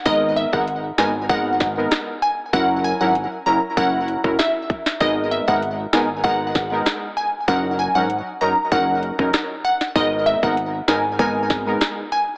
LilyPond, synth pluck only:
\new Staff \with { instrumentName = "Synth pluck" } { \time 4/4 \key gis \minor \tempo 4 = 97 dis''16 r16 e''16 fis''16 r8 gis''16 r16 fis''8. r8. gis''16 r16 | fis''16 r16 gis''16 fis''16 r8 ais''16 r16 fis''8. r16 e''8. r16 | dis''16 r16 e''16 fis''16 r8 gis''16 r16 fis''8. r8. gis''16 r16 | fis''16 r16 gis''16 fis''16 r8 ais''16 r16 fis''8. r8. fis''16 r16 |
dis''16 r16 e''16 fis''16 r8 gis''16 r16 gis''8. r8. gis''16 r16 | }